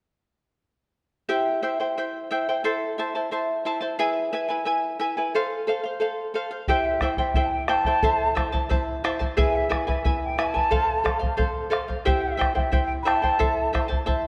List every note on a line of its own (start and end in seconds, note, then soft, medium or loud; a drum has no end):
1.29 1.62 E4 medium
1.29 1.63 G4 medium
1.29 1.62 C5 medium
1.29 1.61 E5 medium
1.29 1.62 G5 medium
1.62 1.79 E4 medium
1.62 1.79 C5 medium
1.62 1.80 E5 soft
1.62 1.78 G5 soft
1.80 1.96 E4 soft
1.80 1.97 C5 soft
1.80 1.97 G5 soft
1.98 2.30 E4 soft
1.98 2.30 C5 soft
1.98 2.29 E5 soft
1.98 2.31 G5 medium
2.31 2.48 E4 medium
2.31 2.47 C5 medium
2.31 2.47 E5 medium
2.31 2.48 G5 medium
2.49 2.63 E4 soft
2.49 2.64 C5 soft
2.49 2.65 G5 soft
2.64 2.97 E4 medium
2.64 2.98 A4 medium
2.64 2.98 C5 medium
2.64 2.97 E5 medium
2.64 2.98 A5 medium
2.98 3.15 E4 soft
2.98 3.14 C5 medium
2.98 3.15 E5 medium
2.98 3.14 A5 medium
3.15 3.31 E4 soft
3.15 3.31 C5 soft
3.15 3.32 A5 soft
3.31 3.65 E4 soft
3.31 3.65 C5 medium
3.31 3.64 E5 soft
3.31 3.65 A5 medium
3.65 3.81 E4 medium
3.65 3.81 C5 medium
3.65 3.82 E5 medium
3.65 3.79 A5 medium
3.81 3.98 E4 soft
3.81 3.99 C5 soft
3.81 3.98 A5 soft
3.99 4.31 E4 medium
3.99 4.32 G#4 medium
3.99 4.32 B4 medium
3.99 4.31 E5 medium
3.99 4.33 G#5 medium
4.33 4.49 E4 soft
4.33 4.49 B4 medium
4.33 4.49 E5 soft
4.33 4.47 G#5 medium
4.49 4.65 E4 soft
4.49 4.65 B4 soft
4.49 4.66 G#5 soft
4.65 4.98 E4 medium
4.65 4.99 B4 medium
4.65 4.98 E5 soft
4.65 5.00 G#5 medium
4.99 5.16 E4 medium
4.99 5.17 B4 medium
4.99 5.16 E5 medium
4.99 5.16 G#5 medium
5.17 5.34 E4 soft
5.17 5.34 B4 soft
5.17 5.33 G#5 soft
5.35 5.66 A4 medium
5.35 5.67 C5 medium
5.35 5.68 F5 medium
5.67 5.84 A4 medium
5.67 5.83 C5 medium
5.67 5.82 F5 medium
5.83 6.00 C5 soft
5.83 6.00 F5 soft
6.00 6.33 A4 soft
6.00 6.34 C5 medium
6.00 6.34 F5 medium
6.34 6.51 A4 medium
6.34 6.50 C5 medium
6.34 6.50 F5 medium
6.51 6.68 C5 soft
6.51 6.67 F5 soft
6.68 7.01 E4 medium
6.68 7.01 G4 medium
6.68 7.01 C5 medium
6.68 7.00 E5 medium
6.68 6.87 G5 medium
6.68 7.02 G5 medium
6.68 bombo low medium
6.85 7.17 E5 medium
7.01 7.18 E4 medium
7.01 7.18 C5 medium
7.01 7.18 E5 soft
7.01 7.17 G5 medium
7.01 bombo rim soft
7.01 bombo low soft
7.17 7.34 E4 soft
7.17 7.35 C5 soft
7.17 7.46 E5 medium
7.17 7.35 G5 soft
7.17 bombo low soft
7.34 7.67 E4 medium
7.34 7.68 C5 medium
7.34 7.67 E5 medium
7.34 7.68 G5 medium
7.34 bombo low medium
7.44 7.53 A5 medium
7.51 7.66 G5 medium
7.66 7.85 E4 medium
7.66 7.85 C5 medium
7.66 7.85 E5 medium
7.66 7.85 G5 medium
7.66 8.64 A5 loud
7.66 bombo rim medium
7.85 8.02 E4 soft
7.85 8.02 C5 soft
7.85 8.02 G5 soft
7.85 bombo low soft
8.03 8.35 E4 medium
8.03 8.36 A4 medium
8.03 8.35 C5 medium
8.03 8.34 E5 medium
8.03 8.35 A5 medium
8.03 bombo low medium
8.35 8.52 E4 soft
8.35 8.52 C5 medium
8.35 8.52 E5 medium
8.35 8.51 A5 medium
8.35 bombo rim soft
8.35 bombo low medium
8.52 8.70 E4 soft
8.52 8.69 C5 soft
8.52 8.69 A5 medium
8.52 bombo low medium
8.69 9.03 E4 medium
8.69 9.03 C5 medium
8.69 9.03 E5 medium
8.69 9.03 A5 medium
8.69 bombo low medium
9.04 9.20 E4 medium
9.04 9.19 C5 medium
9.04 9.20 E5 medium
9.04 9.18 A5 medium
9.04 bombo rim soft
9.19 9.36 E4 soft
9.19 9.36 C5 soft
9.19 9.36 A5 soft
9.19 bombo low soft
9.37 9.69 E4 medium
9.37 9.70 G#4 medium
9.37 9.69 B4 medium
9.37 9.68 E5 medium
9.37 9.69 G#5 medium
9.37 9.57 G#5 medium
9.37 bombo low medium
9.55 9.87 E5 medium
9.69 9.86 E4 medium
9.69 9.87 B4 soft
9.69 9.86 E5 soft
9.69 9.86 G#5 medium
9.69 bombo rim medium
9.69 bombo low medium
9.87 10.04 E4 soft
9.87 10.04 B4 soft
9.87 10.19 E5 medium
9.87 10.03 G#5 soft
9.87 bombo low medium
10.04 10.37 E4 medium
10.04 10.38 B4 medium
10.04 10.37 E5 soft
10.04 10.38 G#5 medium
10.04 bombo low medium
10.23 10.39 G5 medium
10.38 10.54 E4 medium
10.38 10.54 B4 medium
10.38 10.54 E5 medium
10.38 10.50 G#5 loud
10.38 10.53 G#5 medium
10.38 bombo rim medium
10.50 11.38 A5 loud
10.54 10.71 E4 soft
10.54 10.70 B4 soft
10.54 10.70 G#5 soft
10.54 bombo low soft
10.71 11.03 A4 medium
10.71 11.03 C5 medium
10.71 11.04 F5 medium
10.71 bombo low medium
11.04 11.21 A4 soft
11.04 11.19 C5 soft
11.04 11.18 F5 medium
11.04 bombo rim medium
11.04 bombo low medium
11.19 11.36 C5 soft
11.19 11.37 F5 soft
11.19 bombo low medium
11.37 11.69 A4 medium
11.37 11.70 C5 medium
11.37 11.70 F5 medium
11.37 bombo low medium
11.70 11.87 A4 medium
11.70 11.88 C5 medium
11.70 11.87 F5 medium
11.70 bombo rim soft
11.88 12.04 C5 soft
11.88 12.05 F5 soft
11.88 bombo low soft
12.05 12.37 E4 medium
12.05 12.38 G4 medium
12.05 12.37 C5 medium
12.05 12.36 E5 medium
12.05 12.22 G5 medium
12.05 12.38 G5 medium
12.05 bombo low medium
12.21 12.53 E5 medium
12.37 12.54 E4 medium
12.37 12.54 C5 medium
12.37 12.54 E5 soft
12.37 12.54 G5 medium
12.41 bombo rim soft
12.41 bombo low soft
12.54 12.71 E4 soft
12.54 12.71 C5 soft
12.54 12.60 F5 medium
12.54 12.72 G5 soft
12.54 bombo low soft
12.59 12.85 E5 medium
12.72 13.04 E4 medium
12.72 13.05 C5 medium
12.72 13.04 E5 soft
12.72 13.05 G5 medium
12.72 bombo low medium
12.86 12.92 G5 medium
13.02 13.22 E4 medium
13.02 13.22 C5 medium
13.02 13.22 E5 medium
13.02 13.07 B5 medium
13.06 13.21 G5 medium
13.06 14.00 A5 medium
13.06 bombo rim soft
13.22 13.38 E4 soft
13.22 13.39 C5 soft
13.22 13.39 G5 soft
13.22 bombo low soft
13.39 13.72 E4 medium
13.39 13.73 A4 medium
13.39 13.73 C5 medium
13.39 13.72 E5 medium
13.39 13.73 A5 medium
13.39 bombo low medium
13.73 13.89 E4 medium
13.73 13.88 C5 medium
13.73 13.89 E5 medium
13.73 13.87 A5 medium
13.73 bombo rim soft
13.73 bombo low soft
13.88 14.05 E4 soft
13.88 14.06 C5 soft
13.88 14.05 A5 soft
13.92 bombo low soft
14.06 14.27 E4 medium
14.06 14.27 C5 medium
14.06 14.27 E5 medium
14.06 14.27 A5 medium
14.06 bombo low medium